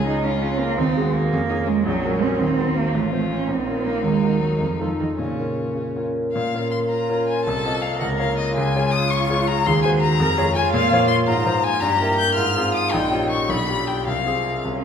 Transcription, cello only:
0.06 0.25 D#4 medium
0.23 0.61 C#4 medium
0.59 0.80 A#3 medium
0.78 1.15 C4 medium
1.14 1.69 A#3 medium
1.68 1.85 G#3 medium
1.86 2.24 F#3 medium
2.22 2.40 C#4 medium
2.39 2.77 C4 medium
2.75 2.95 A#3 medium
2.93 3.30 A3 medium
3.31 3.51 C#4 medium
3.49 3.87 C4 medium
3.86 4.04 A#3 medium
4.04 4.42 G#3 medium
4.41 4.60 F#3 medium
4.60 4.79 F3 medium
4.81 4.88 F3 medium
5.00 5.07 D#3 medium
5.19 5.76 C#3 soft
6.91 7.42 F4 medium
7.46 7.99 A4 medium
8.00 8.55 A#4 medium
8.55 9.62 F4 medium
9.65 10.18 G#4 medium
10.20 10.36 A#4 medium
10.37 10.44 G#4 medium
10.55 11.26 F4 medium
11.28 11.81 F4 medium
11.82 12.35 G4 medium
12.36 12.94 F4 medium
12.93 13.51 D#4 medium
13.50 14.09 D4 medium
14.08 14.61 C4 soft
14.65 14.84 C#4 medium

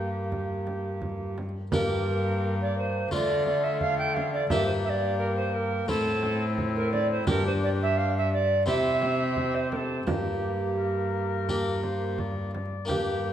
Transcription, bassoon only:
0.00 1.37 A#3 medium
1.73 3.15 A#3 medium
3.13 4.49 A3 medium
4.50 5.91 A#3 medium
5.89 7.27 C4 medium
7.27 8.36 D4 medium
8.67 10.09 C4 medium
10.08 12.57 A#3 medium
12.90 13.33 A#3 medium

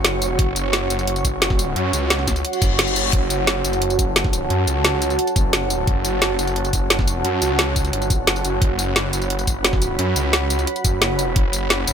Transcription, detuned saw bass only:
0.00 0.37 F#1 loud
0.39 0.89 F#1 loud
0.90 1.23 F#1 loud
1.25 1.75 F#1 loud
1.76 1.92 F#2 loud
1.93 2.43 C#2 loud
2.62 3.12 F#1 loud
3.13 3.63 F#1 loud
3.64 3.97 F#1 loud
3.99 4.49 F#1 loud
4.50 4.66 F#2 loud
4.67 5.17 C#2 loud
5.36 5.86 F#1 loud
5.87 6.37 F#1 medium
6.39 6.72 F#1 loud
6.73 7.23 F#1 loud
7.25 7.40 F#2 loud
7.42 7.92 C#2 loud
7.93 8.26 G1 loud
8.27 8.43 F#1 loud
8.45 8.60 F#1 loud
8.62 9.12 F#1 loud
9.13 9.46 F#1 loud
9.47 9.97 F#1 loud
9.99 10.15 F#2 loud
10.16 10.66 C#2 loud
10.85 11.35 F#1 loud
11.36 11.86 F#1 loud
11.87 11.93 F#1 loud

